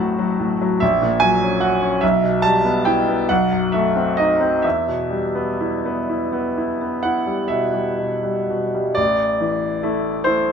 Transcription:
Already playing: A1 F#3 C4 F#4 F#5 A5 B5
0.00 A2
0.19 F#3
0.39 A2
0.61 F#3
0.80 A#1 E5
1.02 A#2
1.20 F#3 G#5
1.43 C#4
1.61 F#4 F#5
1.82 C#4
2.01 B1 E5
2.23 B2
2.42 G3 A5
2.65 B3
2.85 E4 G5
3.09 B3
3.29 B1 F#5
3.52 F#2
3.72 A3 E5
3.96 C4
4.17 D#4 D#5
4.40 C4
4.62 E2 E5
4.87 B2
5.10 G3
5.35 B3
5.60 E4
5.85 B3
6.09 E4
6.33 B3
6.57 E4
6.81 B3
7.03 E4 F#5
7.27 G3
7.48 B2 E5
7.74 G3
7.98 B2
8.23 G3
8.50 B2
8.74 G3
8.95 A1 D5
9.41 E3
9.83 A3 E4
10.24 A3 E4 C5

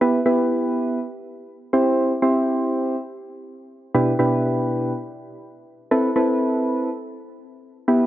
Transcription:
0.01 B3 E4 G4 B4
0.26 B3 E4 G4 B4
1.73 C4 E4 G4 C5
2.22 C4 E4 G4 C5
3.94 B2 D4 E4 G4 B4
4.19 B2 D4 E4 G4 B4
5.91 C4 E4 A4 B4
6.16 C4 E4 A4 B4
7.88 B3 E4 G4 B4

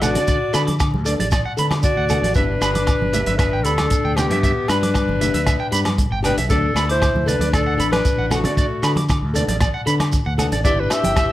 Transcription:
Already playing: A1
0.02 B3 D4 F#4 A4 D5 F#5, cross-stick, closed hi-hat, low conga, low agogo, shekere
0.15 D3 D5, closed hi-hat, high conga
0.28 D5, kick, closed hi-hat, shekere
0.53 D3 D4 A4 B5, cross-stick, closed hi-hat, low agogo, shekere
0.57 B3
0.67 D6, closed hi-hat, high conga
0.80 D6, kick, cross-stick, closed hi-hat, low agogo, shekere
0.94 D2, high conga
1.05 B3 D4 A4 D5, closed hi-hat, shekere
1.19 A1 D5, closed hi-hat, high conga
1.31 D5, kick, cross-stick, closed hi-hat, low agogo, shekere
1.45 F#5
1.57 D3 B3 D4 A4 B5, closed hi-hat, shekere
1.71 D6, cross-stick, closed hi-hat, high conga, low agogo
1.83 F#4 D5, kick, closed hi-hat, shekere
1.96 D2 F#5
2.09 B3 D4 A4 F#5, closed hi-hat, low conga, low agogo, shekere
2.22 A1 D5, closed hi-hat, high conga
2.35 G1 E3 B3 D4 G4 B4 E5, kick, closed hi-hat, shekere
2.61 G1 B3 D4 G4 B5, cross-stick, closed hi-hat, low agogo, shekere
2.75 D6, closed hi-hat, high conga
2.87 D6, kick, cross-stick, closed hi-hat, low agogo, shekere
3.00 G1, high conga
3.13 B3 D4 G4 E5, closed hi-hat, low conga, shekere
3.26 G1 E5, closed hi-hat, high conga
3.38 D4 B4 E5, kick, cross-stick, closed hi-hat, low agogo, shekere
3.53 G5
3.64 D2 D4 G4 A4 B5, closed hi-hat, shekere
3.69 B3
3.78 D6, cross-stick, closed hi-hat, high conga, low agogo
3.90 kick, closed hi-hat, shekere
4.04 D2 G5
4.16 B3 D4 G4 G5, cross-stick, closed hi-hat, low conga, low agogo, shekere
4.20 B3
4.30 G2 E5, closed hi-hat, high conga
4.43 E5, kick, closed hi-hat, shekere
4.68 G2 D4 G4 B4 B5, cross-stick, closed hi-hat, low agogo, shekere
4.72 B3
4.83 D6, closed hi-hat, high conga
4.94 D6, kick, cross-stick, closed hi-hat, low agogo, shekere
5.08 G1, high conga
5.21 B3 D4 G4 E5, closed hi-hat, low conga, shekere
5.34 D2 E5, closed hi-hat, high conga
5.46 E5, kick, cross-stick, closed hi-hat, low agogo, shekere
5.60 G5
5.72 G2 B3 D4 G4 B5, closed hi-hat, shekere
5.85 D6, cross-stick, closed hi-hat, high conga, low agogo
5.98 kick, closed hi-hat, shekere
6.11 G1 G5
6.23 B3 D4 G4 B4 G5, closed hi-hat, low conga, low agogo, shekere
6.37 B1 E5, closed hi-hat, high conga
6.49 D2 F#3 B3 D4 A4 D5, kick, closed hi-hat, shekere
6.74 D2 B3 D4 A4 B5, cross-stick, closed hi-hat, low agogo, shekere
6.89 E4 C5 D6, closed hi-hat
7.02 D6, kick, cross-stick, closed hi-hat, low agogo, shekere
7.14 D2, high conga
7.26 B3 A4 B4 D5, closed hi-hat, low conga, shekere
7.30 D4
7.39 D2 D5, closed hi-hat, high conga
7.53 D4 A4 D5, kick, cross-stick, closed hi-hat, low agogo, shekere
7.67 F#5
7.78 A1 B3 D4 A4 B5, closed hi-hat, shekere
7.92 B4 D6, cross-stick, closed hi-hat, high conga, low agogo
7.96 D4
8.05 kick, closed hi-hat, shekere
8.18 A1 F#5
8.31 B3 D4 F#4 A4 F#5, cross-stick, closed hi-hat, low conga, low agogo, shekere
8.35 A3
8.44 D3 D5, closed hi-hat, high conga
8.57 D5, kick, closed hi-hat, shekere
8.82 D3 B3 D4 A4 B5, cross-stick, closed hi-hat, low agogo, shekere
8.96 D6, closed hi-hat, high conga
9.09 D6, kick, cross-stick, closed hi-hat, low agogo, shekere
9.22 D2
9.34 B3 D4 A4 D5, closed hi-hat, low conga, shekere
9.48 A1 D5, closed hi-hat, high conga
9.61 D5, kick, cross-stick, closed hi-hat, low agogo, shekere
9.74 F#5
9.86 D3 B3 D4 A4 B5, closed hi-hat, shekere
10.00 D6, cross-stick, closed hi-hat, high conga, low agogo
10.12 kick, closed hi-hat, shekere
10.26 D2 F#5
10.38 B3 D4 A4 F#5, closed hi-hat, low conga, low agogo, shekere
10.52 A1 D5, closed hi-hat, high conga
10.63 G1 E3 B3 D4 E4 G4 B4 D5 E5, kick, closed hi-hat, shekere
10.80 D4 B4
10.90 B3 D4 G4 E5, muted clean electric guitar stroke, cross-stick, closed hi-hat, low agogo, shekere
11.04 G1 G5, closed hi-hat, high conga
11.16 E5, kick, cross-stick, closed hi-hat, low agogo, shekere

